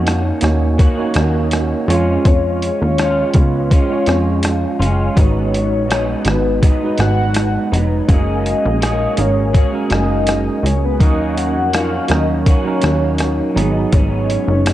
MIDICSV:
0, 0, Header, 1, 6, 480
1, 0, Start_track
1, 0, Tempo, 729838
1, 1482, Time_signature, 4, 2, 24, 8
1, 9690, End_track
2, 0, Start_track
2, 0, Title_t, "Soft synth lead"
2, 0, Program_c, 0, 80
2, 1493, Note_on_c, 0, 73, 122
2, 2218, Note_on_c, 0, 71, 91
2, 2227, Note_off_c, 0, 73, 0
2, 2459, Note_on_c, 0, 73, 99
2, 2469, Note_off_c, 0, 71, 0
2, 3170, Note_off_c, 0, 73, 0
2, 3422, Note_on_c, 0, 73, 95
2, 4130, Note_on_c, 0, 71, 76
2, 4140, Note_off_c, 0, 73, 0
2, 4362, Note_off_c, 0, 71, 0
2, 4366, Note_on_c, 0, 75, 91
2, 4587, Note_off_c, 0, 75, 0
2, 4603, Note_on_c, 0, 78, 104
2, 5056, Note_off_c, 0, 78, 0
2, 5336, Note_on_c, 0, 75, 96
2, 6052, Note_on_c, 0, 73, 79
2, 6062, Note_off_c, 0, 75, 0
2, 6286, Note_off_c, 0, 73, 0
2, 6291, Note_on_c, 0, 73, 86
2, 6383, Note_off_c, 0, 73, 0
2, 6528, Note_on_c, 0, 75, 104
2, 7007, Note_on_c, 0, 73, 91
2, 7017, Note_off_c, 0, 75, 0
2, 7131, Note_off_c, 0, 73, 0
2, 7135, Note_on_c, 0, 71, 90
2, 7234, Note_off_c, 0, 71, 0
2, 7239, Note_on_c, 0, 75, 107
2, 7462, Note_off_c, 0, 75, 0
2, 7480, Note_on_c, 0, 78, 93
2, 7723, Note_on_c, 0, 77, 98
2, 7733, Note_off_c, 0, 78, 0
2, 7961, Note_off_c, 0, 77, 0
2, 7967, Note_on_c, 0, 75, 87
2, 8059, Note_off_c, 0, 75, 0
2, 8215, Note_on_c, 0, 73, 91
2, 8901, Note_off_c, 0, 73, 0
2, 9167, Note_on_c, 0, 73, 124
2, 9690, Note_off_c, 0, 73, 0
2, 9690, End_track
3, 0, Start_track
3, 0, Title_t, "Tine electric piano"
3, 0, Program_c, 1, 4
3, 0, Control_c, 1, 64, 127
3, 0, Note_on_c, 1, 58, 85
3, 0, Note_on_c, 1, 63, 76
3, 0, Note_on_c, 1, 66, 73
3, 0, Note_on_c, 1, 73, 80
3, 67, Note_off_c, 1, 66, 0
3, 70, Note_off_c, 1, 73, 0
3, 270, Note_off_c, 1, 58, 0
3, 270, Note_on_c, 1, 58, 83
3, 276, Note_off_c, 1, 63, 0
3, 276, Note_on_c, 1, 63, 67
3, 282, Note_on_c, 1, 66, 66
3, 287, Note_on_c, 1, 73, 82
3, 529, Note_off_c, 1, 58, 0
3, 532, Note_off_c, 1, 63, 0
3, 535, Note_off_c, 1, 66, 0
3, 538, Note_off_c, 1, 73, 0
3, 642, Note_on_c, 1, 58, 77
3, 650, Note_on_c, 1, 63, 76
3, 652, Note_on_c, 1, 66, 73
3, 658, Note_on_c, 1, 73, 97
3, 1225, Note_off_c, 1, 58, 0
3, 1229, Note_off_c, 1, 63, 0
3, 1230, Note_off_c, 1, 66, 0
3, 1233, Note_off_c, 1, 73, 0
3, 1238, Note_on_c, 1, 56, 84
3, 1240, Note_on_c, 1, 61, 77
3, 1246, Note_on_c, 1, 65, 82
3, 1252, Control_c, 1, 64, 0
3, 1252, Note_on_c, 1, 73, 88
3, 1377, Control_c, 1, 64, 127
3, 2013, Note_off_c, 1, 56, 0
3, 2014, Note_off_c, 1, 61, 0
3, 2017, Note_off_c, 1, 65, 0
3, 2020, Note_off_c, 1, 73, 0
3, 2194, Note_on_c, 1, 56, 63
3, 2200, Note_on_c, 1, 61, 57
3, 2204, Note_on_c, 1, 65, 62
3, 2207, Note_on_c, 1, 73, 75
3, 2451, Note_off_c, 1, 56, 0
3, 2454, Note_off_c, 1, 61, 0
3, 2456, Note_off_c, 1, 65, 0
3, 2458, Note_off_c, 1, 73, 0
3, 2567, Note_on_c, 1, 56, 66
3, 2574, Note_on_c, 1, 61, 60
3, 2579, Note_on_c, 1, 65, 61
3, 2583, Note_on_c, 1, 73, 73
3, 3147, Note_off_c, 1, 56, 0
3, 3151, Note_off_c, 1, 61, 0
3, 3153, Note_off_c, 1, 65, 0
3, 3155, Note_off_c, 1, 73, 0
3, 3392, Note_on_c, 1, 56, 60
3, 3399, Note_on_c, 1, 63, 64
3, 3406, Note_on_c, 1, 66, 58
3, 3409, Control_c, 1, 64, 0
3, 3412, Note_on_c, 1, 71, 73
3, 3517, Control_c, 1, 64, 127
3, 3903, Note_off_c, 1, 56, 0
3, 3906, Note_off_c, 1, 63, 0
3, 3909, Note_off_c, 1, 66, 0
3, 3913, Note_off_c, 1, 71, 0
3, 4115, Note_on_c, 1, 56, 68
3, 4118, Note_on_c, 1, 63, 56
3, 4126, Note_on_c, 1, 66, 57
3, 4133, Note_on_c, 1, 71, 64
3, 4371, Note_off_c, 1, 56, 0
3, 4373, Note_off_c, 1, 63, 0
3, 4377, Note_off_c, 1, 66, 0
3, 4380, Note_off_c, 1, 71, 0
3, 4493, Note_on_c, 1, 56, 72
3, 4496, Note_on_c, 1, 63, 61
3, 4503, Note_on_c, 1, 66, 62
3, 4510, Note_on_c, 1, 71, 76
3, 5070, Note_off_c, 1, 56, 0
3, 5071, Note_off_c, 1, 63, 0
3, 5075, Note_off_c, 1, 66, 0
3, 5078, Note_off_c, 1, 71, 0
3, 5311, Note_on_c, 1, 56, 67
3, 5318, Note_on_c, 1, 61, 63
3, 5323, Note_on_c, 1, 66, 62
3, 5329, Note_on_c, 1, 70, 73
3, 5330, Control_c, 1, 64, 0
3, 5447, Control_c, 1, 64, 127
3, 5822, Note_off_c, 1, 56, 0
3, 5825, Note_off_c, 1, 61, 0
3, 5828, Note_off_c, 1, 66, 0
3, 5831, Note_off_c, 1, 70, 0
3, 6029, Note_on_c, 1, 56, 60
3, 6035, Note_on_c, 1, 61, 57
3, 6041, Note_on_c, 1, 66, 58
3, 6046, Note_on_c, 1, 70, 66
3, 6288, Note_off_c, 1, 56, 0
3, 6291, Note_off_c, 1, 61, 0
3, 6293, Note_off_c, 1, 66, 0
3, 6296, Note_off_c, 1, 70, 0
3, 6395, Note_on_c, 1, 56, 65
3, 6403, Note_on_c, 1, 61, 60
3, 6409, Note_on_c, 1, 66, 60
3, 6412, Note_on_c, 1, 70, 74
3, 6980, Note_off_c, 1, 56, 0
3, 6984, Note_off_c, 1, 61, 0
3, 6987, Note_off_c, 1, 66, 0
3, 6989, Note_off_c, 1, 70, 0
3, 7231, Note_on_c, 1, 54, 67
3, 7236, Note_on_c, 1, 61, 58
3, 7240, Note_on_c, 1, 63, 63
3, 7245, Note_on_c, 1, 70, 77
3, 7248, Control_c, 1, 64, 0
3, 7361, Control_c, 1, 64, 127
3, 7741, Note_off_c, 1, 54, 0
3, 7744, Note_off_c, 1, 61, 0
3, 7746, Note_off_c, 1, 63, 0
3, 7748, Note_off_c, 1, 70, 0
3, 7950, Note_on_c, 1, 54, 69
3, 7956, Note_on_c, 1, 61, 59
3, 7962, Note_on_c, 1, 63, 57
3, 7967, Note_on_c, 1, 70, 74
3, 8208, Note_off_c, 1, 54, 0
3, 8211, Note_off_c, 1, 61, 0
3, 8214, Note_off_c, 1, 63, 0
3, 8216, Note_off_c, 1, 70, 0
3, 8317, Note_on_c, 1, 54, 68
3, 8327, Note_on_c, 1, 61, 61
3, 8333, Note_on_c, 1, 63, 66
3, 8335, Note_on_c, 1, 70, 76
3, 8901, Note_off_c, 1, 54, 0
3, 8906, Note_off_c, 1, 61, 0
3, 8909, Note_off_c, 1, 63, 0
3, 8909, Note_on_c, 1, 54, 82
3, 8910, Note_off_c, 1, 70, 0
3, 8913, Note_on_c, 1, 59, 72
3, 8920, Note_on_c, 1, 63, 73
3, 8926, Note_on_c, 1, 68, 87
3, 8927, Control_c, 1, 64, 0
3, 9026, Control_c, 1, 64, 127
3, 9687, Note_off_c, 1, 54, 0
3, 9689, Note_off_c, 1, 59, 0
3, 9690, Note_off_c, 1, 63, 0
3, 9690, Note_off_c, 1, 68, 0
3, 9690, End_track
4, 0, Start_track
4, 0, Title_t, "Clean electric guitar"
4, 0, Program_c, 2, 27
4, 0, Note_on_c, 2, 51, 70
4, 0, Note_on_c, 2, 58, 71
4, 0, Note_on_c, 2, 61, 79
4, 0, Note_on_c, 2, 66, 83
4, 506, Note_off_c, 2, 51, 0
4, 512, Note_off_c, 2, 58, 0
4, 514, Note_on_c, 2, 51, 68
4, 519, Note_off_c, 2, 66, 0
4, 519, Note_on_c, 2, 58, 72
4, 520, Note_off_c, 2, 61, 0
4, 523, Note_on_c, 2, 61, 78
4, 527, Note_on_c, 2, 66, 81
4, 1238, Note_off_c, 2, 51, 0
4, 1241, Note_off_c, 2, 58, 0
4, 1241, Note_off_c, 2, 66, 0
4, 1243, Note_on_c, 2, 65, 60
4, 1249, Note_off_c, 2, 61, 0
4, 1252, Note_on_c, 2, 61, 66
4, 1256, Note_on_c, 2, 56, 56
4, 1262, Note_on_c, 2, 53, 58
4, 1954, Note_off_c, 2, 53, 0
4, 1962, Note_on_c, 2, 53, 47
4, 1963, Note_off_c, 2, 65, 0
4, 1967, Note_off_c, 2, 56, 0
4, 1967, Note_off_c, 2, 61, 0
4, 1969, Note_on_c, 2, 56, 50
4, 1978, Note_on_c, 2, 61, 54
4, 1983, Note_on_c, 2, 65, 61
4, 2429, Note_off_c, 2, 53, 0
4, 2437, Note_on_c, 2, 53, 66
4, 2441, Note_off_c, 2, 56, 0
4, 2442, Note_off_c, 2, 61, 0
4, 2444, Note_off_c, 2, 65, 0
4, 2444, Note_on_c, 2, 56, 70
4, 2450, Note_on_c, 2, 61, 70
4, 2452, Note_on_c, 2, 65, 71
4, 3145, Note_off_c, 2, 65, 0
4, 3153, Note_on_c, 2, 65, 49
4, 3157, Note_off_c, 2, 61, 0
4, 3159, Note_off_c, 2, 53, 0
4, 3165, Note_on_c, 2, 61, 47
4, 3177, Note_off_c, 2, 56, 0
4, 3180, Note_on_c, 2, 56, 39
4, 3385, Note_on_c, 2, 44, 69
4, 3391, Note_on_c, 2, 54, 73
4, 3394, Note_off_c, 2, 56, 0
4, 3397, Note_off_c, 2, 65, 0
4, 3397, Note_on_c, 2, 59, 66
4, 3399, Note_off_c, 2, 61, 0
4, 3402, Note_on_c, 2, 63, 69
4, 3859, Note_off_c, 2, 44, 0
4, 3867, Note_on_c, 2, 44, 54
4, 3876, Note_off_c, 2, 54, 0
4, 3879, Note_off_c, 2, 59, 0
4, 3879, Note_on_c, 2, 54, 48
4, 3881, Note_off_c, 2, 63, 0
4, 3888, Note_on_c, 2, 59, 56
4, 3893, Note_on_c, 2, 63, 59
4, 4344, Note_off_c, 2, 44, 0
4, 4352, Note_on_c, 2, 44, 71
4, 4356, Note_off_c, 2, 59, 0
4, 4358, Note_off_c, 2, 54, 0
4, 4360, Note_off_c, 2, 63, 0
4, 4361, Note_on_c, 2, 54, 64
4, 4364, Note_on_c, 2, 59, 76
4, 4368, Note_on_c, 2, 63, 70
4, 5068, Note_off_c, 2, 63, 0
4, 5076, Note_off_c, 2, 44, 0
4, 5076, Note_on_c, 2, 63, 43
4, 5082, Note_off_c, 2, 59, 0
4, 5090, Note_on_c, 2, 59, 44
4, 5099, Note_off_c, 2, 54, 0
4, 5101, Note_on_c, 2, 54, 41
4, 5308, Note_off_c, 2, 54, 0
4, 5316, Note_on_c, 2, 54, 68
4, 5317, Note_off_c, 2, 59, 0
4, 5318, Note_off_c, 2, 63, 0
4, 5320, Note_on_c, 2, 58, 67
4, 5324, Note_on_c, 2, 61, 66
4, 5332, Note_on_c, 2, 68, 68
4, 5789, Note_off_c, 2, 54, 0
4, 5792, Note_on_c, 2, 54, 58
4, 5798, Note_off_c, 2, 58, 0
4, 5801, Note_on_c, 2, 58, 52
4, 5806, Note_off_c, 2, 68, 0
4, 5808, Note_off_c, 2, 61, 0
4, 5811, Note_on_c, 2, 61, 59
4, 5814, Note_on_c, 2, 68, 63
4, 6267, Note_off_c, 2, 54, 0
4, 6269, Note_on_c, 2, 54, 65
4, 6282, Note_off_c, 2, 58, 0
4, 6285, Note_on_c, 2, 58, 64
4, 6287, Note_off_c, 2, 68, 0
4, 6290, Note_off_c, 2, 61, 0
4, 6293, Note_on_c, 2, 61, 69
4, 6303, Note_on_c, 2, 68, 78
4, 7231, Note_off_c, 2, 54, 0
4, 7234, Note_on_c, 2, 51, 79
4, 7241, Note_off_c, 2, 58, 0
4, 7244, Note_on_c, 2, 58, 74
4, 7246, Note_off_c, 2, 61, 0
4, 7248, Note_on_c, 2, 61, 74
4, 7250, Note_off_c, 2, 68, 0
4, 7252, Note_on_c, 2, 66, 78
4, 7712, Note_off_c, 2, 51, 0
4, 7715, Note_on_c, 2, 51, 60
4, 7718, Note_off_c, 2, 58, 0
4, 7724, Note_off_c, 2, 61, 0
4, 7726, Note_on_c, 2, 58, 58
4, 7733, Note_on_c, 2, 61, 58
4, 7738, Note_off_c, 2, 66, 0
4, 7741, Note_on_c, 2, 66, 57
4, 8193, Note_off_c, 2, 51, 0
4, 8193, Note_off_c, 2, 58, 0
4, 8195, Note_on_c, 2, 51, 69
4, 8197, Note_off_c, 2, 61, 0
4, 8201, Note_on_c, 2, 58, 68
4, 8204, Note_on_c, 2, 61, 74
4, 8207, Note_off_c, 2, 66, 0
4, 8209, Note_on_c, 2, 66, 78
4, 8913, Note_off_c, 2, 61, 0
4, 8916, Note_on_c, 2, 63, 53
4, 8920, Note_off_c, 2, 58, 0
4, 8930, Note_on_c, 2, 59, 48
4, 8939, Note_off_c, 2, 51, 0
4, 8941, Note_on_c, 2, 54, 41
4, 9153, Note_on_c, 2, 44, 73
4, 9155, Note_off_c, 2, 54, 0
4, 9157, Note_off_c, 2, 63, 0
4, 9163, Note_on_c, 2, 54, 70
4, 9165, Note_off_c, 2, 59, 0
4, 9173, Note_off_c, 2, 66, 0
4, 9177, Note_on_c, 2, 59, 70
4, 9184, Note_on_c, 2, 63, 79
4, 9690, Note_off_c, 2, 44, 0
4, 9690, Note_off_c, 2, 54, 0
4, 9690, Note_off_c, 2, 59, 0
4, 9690, Note_off_c, 2, 63, 0
4, 9690, End_track
5, 0, Start_track
5, 0, Title_t, "Analog synth bass"
5, 0, Program_c, 3, 38
5, 0, Note_on_c, 3, 41, 89
5, 211, Note_off_c, 3, 41, 0
5, 280, Note_on_c, 3, 39, 83
5, 578, Note_off_c, 3, 39, 0
5, 760, Note_on_c, 3, 39, 92
5, 1145, Note_off_c, 3, 39, 0
5, 1237, Note_on_c, 3, 41, 93
5, 1431, Note_off_c, 3, 41, 0
5, 1480, Note_on_c, 3, 41, 100
5, 1779, Note_off_c, 3, 41, 0
5, 1852, Note_on_c, 3, 39, 84
5, 2131, Note_off_c, 3, 39, 0
5, 2198, Note_on_c, 3, 37, 83
5, 2497, Note_off_c, 3, 37, 0
5, 2679, Note_on_c, 3, 41, 87
5, 3064, Note_off_c, 3, 41, 0
5, 3155, Note_on_c, 3, 30, 88
5, 3350, Note_off_c, 3, 30, 0
5, 3400, Note_on_c, 3, 32, 100
5, 3767, Note_on_c, 3, 34, 82
5, 3776, Note_off_c, 3, 32, 0
5, 4048, Note_off_c, 3, 34, 0
5, 4113, Note_on_c, 3, 32, 81
5, 4414, Note_off_c, 3, 32, 0
5, 4596, Note_on_c, 3, 32, 89
5, 4982, Note_off_c, 3, 32, 0
5, 5079, Note_on_c, 3, 29, 88
5, 5271, Note_off_c, 3, 29, 0
5, 5318, Note_on_c, 3, 30, 91
5, 5616, Note_off_c, 3, 30, 0
5, 5691, Note_on_c, 3, 34, 91
5, 5970, Note_off_c, 3, 34, 0
5, 6039, Note_on_c, 3, 32, 82
5, 6337, Note_off_c, 3, 32, 0
5, 6515, Note_on_c, 3, 30, 92
5, 6901, Note_off_c, 3, 30, 0
5, 6992, Note_on_c, 3, 37, 82
5, 7235, Note_on_c, 3, 39, 96
5, 7245, Note_off_c, 3, 37, 0
5, 7607, Note_on_c, 3, 41, 90
5, 7617, Note_off_c, 3, 39, 0
5, 7887, Note_off_c, 3, 41, 0
5, 7955, Note_on_c, 3, 39, 82
5, 8254, Note_off_c, 3, 39, 0
5, 8440, Note_on_c, 3, 39, 96
5, 8824, Note_off_c, 3, 39, 0
5, 8918, Note_on_c, 3, 32, 102
5, 9111, Note_off_c, 3, 32, 0
5, 9159, Note_on_c, 3, 32, 98
5, 9457, Note_off_c, 3, 32, 0
5, 9523, Note_on_c, 3, 30, 91
5, 9690, Note_off_c, 3, 30, 0
5, 9690, End_track
6, 0, Start_track
6, 0, Title_t, "Drums"
6, 44, Note_on_c, 9, 42, 64
6, 51, Note_on_c, 9, 37, 84
6, 109, Note_off_c, 9, 42, 0
6, 117, Note_off_c, 9, 37, 0
6, 269, Note_on_c, 9, 42, 53
6, 290, Note_on_c, 9, 37, 76
6, 335, Note_off_c, 9, 42, 0
6, 355, Note_off_c, 9, 37, 0
6, 521, Note_on_c, 9, 36, 85
6, 521, Note_on_c, 9, 42, 66
6, 586, Note_off_c, 9, 36, 0
6, 587, Note_off_c, 9, 42, 0
6, 749, Note_on_c, 9, 42, 47
6, 766, Note_on_c, 9, 37, 87
6, 815, Note_off_c, 9, 42, 0
6, 831, Note_off_c, 9, 37, 0
6, 995, Note_on_c, 9, 42, 67
6, 1008, Note_on_c, 9, 37, 75
6, 1061, Note_off_c, 9, 42, 0
6, 1074, Note_off_c, 9, 37, 0
6, 1251, Note_on_c, 9, 42, 48
6, 1316, Note_off_c, 9, 42, 0
6, 1481, Note_on_c, 9, 36, 108
6, 1482, Note_on_c, 9, 42, 61
6, 1547, Note_off_c, 9, 36, 0
6, 1548, Note_off_c, 9, 42, 0
6, 1725, Note_on_c, 9, 42, 48
6, 1791, Note_off_c, 9, 42, 0
6, 1962, Note_on_c, 9, 42, 64
6, 1970, Note_on_c, 9, 37, 82
6, 2028, Note_off_c, 9, 42, 0
6, 2035, Note_off_c, 9, 37, 0
6, 2193, Note_on_c, 9, 42, 54
6, 2202, Note_on_c, 9, 36, 85
6, 2259, Note_off_c, 9, 42, 0
6, 2268, Note_off_c, 9, 36, 0
6, 2442, Note_on_c, 9, 36, 87
6, 2444, Note_on_c, 9, 42, 66
6, 2507, Note_off_c, 9, 36, 0
6, 2509, Note_off_c, 9, 42, 0
6, 2672, Note_on_c, 9, 42, 47
6, 2689, Note_on_c, 9, 37, 80
6, 2738, Note_off_c, 9, 42, 0
6, 2754, Note_off_c, 9, 37, 0
6, 2912, Note_on_c, 9, 42, 71
6, 2926, Note_on_c, 9, 37, 73
6, 2978, Note_off_c, 9, 42, 0
6, 2992, Note_off_c, 9, 37, 0
6, 3170, Note_on_c, 9, 42, 44
6, 3236, Note_off_c, 9, 42, 0
6, 3399, Note_on_c, 9, 36, 108
6, 3401, Note_on_c, 9, 42, 65
6, 3465, Note_off_c, 9, 36, 0
6, 3466, Note_off_c, 9, 42, 0
6, 3646, Note_on_c, 9, 42, 43
6, 3712, Note_off_c, 9, 42, 0
6, 3884, Note_on_c, 9, 42, 65
6, 3891, Note_on_c, 9, 37, 91
6, 3950, Note_off_c, 9, 42, 0
6, 3957, Note_off_c, 9, 37, 0
6, 4108, Note_on_c, 9, 42, 56
6, 4128, Note_on_c, 9, 37, 87
6, 4174, Note_off_c, 9, 42, 0
6, 4194, Note_off_c, 9, 37, 0
6, 4358, Note_on_c, 9, 36, 82
6, 4359, Note_on_c, 9, 42, 67
6, 4424, Note_off_c, 9, 36, 0
6, 4424, Note_off_c, 9, 42, 0
6, 4588, Note_on_c, 9, 42, 46
6, 4604, Note_on_c, 9, 37, 85
6, 4653, Note_off_c, 9, 42, 0
6, 4670, Note_off_c, 9, 37, 0
6, 4830, Note_on_c, 9, 42, 69
6, 4843, Note_on_c, 9, 37, 73
6, 4896, Note_off_c, 9, 42, 0
6, 4909, Note_off_c, 9, 37, 0
6, 5087, Note_on_c, 9, 42, 46
6, 5153, Note_off_c, 9, 42, 0
6, 5318, Note_on_c, 9, 36, 97
6, 5319, Note_on_c, 9, 42, 58
6, 5384, Note_off_c, 9, 36, 0
6, 5384, Note_off_c, 9, 42, 0
6, 5564, Note_on_c, 9, 42, 42
6, 5630, Note_off_c, 9, 42, 0
6, 5802, Note_on_c, 9, 42, 66
6, 5810, Note_on_c, 9, 37, 82
6, 5868, Note_off_c, 9, 42, 0
6, 5875, Note_off_c, 9, 37, 0
6, 6032, Note_on_c, 9, 42, 49
6, 6098, Note_off_c, 9, 42, 0
6, 6278, Note_on_c, 9, 36, 82
6, 6278, Note_on_c, 9, 42, 65
6, 6344, Note_off_c, 9, 36, 0
6, 6344, Note_off_c, 9, 42, 0
6, 6511, Note_on_c, 9, 42, 43
6, 6527, Note_on_c, 9, 37, 89
6, 6577, Note_off_c, 9, 42, 0
6, 6593, Note_off_c, 9, 37, 0
6, 6753, Note_on_c, 9, 42, 68
6, 6766, Note_on_c, 9, 37, 79
6, 6818, Note_off_c, 9, 42, 0
6, 6832, Note_off_c, 9, 37, 0
6, 7010, Note_on_c, 9, 42, 51
6, 7076, Note_off_c, 9, 42, 0
6, 7237, Note_on_c, 9, 36, 107
6, 7238, Note_on_c, 9, 42, 61
6, 7303, Note_off_c, 9, 36, 0
6, 7304, Note_off_c, 9, 42, 0
6, 7481, Note_on_c, 9, 42, 45
6, 7547, Note_off_c, 9, 42, 0
6, 7717, Note_on_c, 9, 42, 69
6, 7725, Note_on_c, 9, 37, 87
6, 7783, Note_off_c, 9, 42, 0
6, 7791, Note_off_c, 9, 37, 0
6, 7947, Note_on_c, 9, 42, 54
6, 7967, Note_on_c, 9, 37, 86
6, 8013, Note_off_c, 9, 42, 0
6, 8033, Note_off_c, 9, 37, 0
6, 8197, Note_on_c, 9, 36, 84
6, 8197, Note_on_c, 9, 42, 68
6, 8262, Note_off_c, 9, 42, 0
6, 8263, Note_off_c, 9, 36, 0
6, 8428, Note_on_c, 9, 42, 48
6, 8444, Note_on_c, 9, 37, 88
6, 8494, Note_off_c, 9, 42, 0
6, 8510, Note_off_c, 9, 37, 0
6, 8670, Note_on_c, 9, 42, 70
6, 8684, Note_on_c, 9, 37, 71
6, 8736, Note_off_c, 9, 42, 0
6, 8750, Note_off_c, 9, 37, 0
6, 8926, Note_on_c, 9, 42, 48
6, 8992, Note_off_c, 9, 42, 0
6, 9158, Note_on_c, 9, 42, 58
6, 9160, Note_on_c, 9, 36, 103
6, 9224, Note_off_c, 9, 42, 0
6, 9225, Note_off_c, 9, 36, 0
6, 9403, Note_on_c, 9, 42, 45
6, 9469, Note_off_c, 9, 42, 0
6, 9641, Note_on_c, 9, 42, 72
6, 9649, Note_on_c, 9, 37, 86
6, 9690, Note_off_c, 9, 37, 0
6, 9690, Note_off_c, 9, 42, 0
6, 9690, End_track
0, 0, End_of_file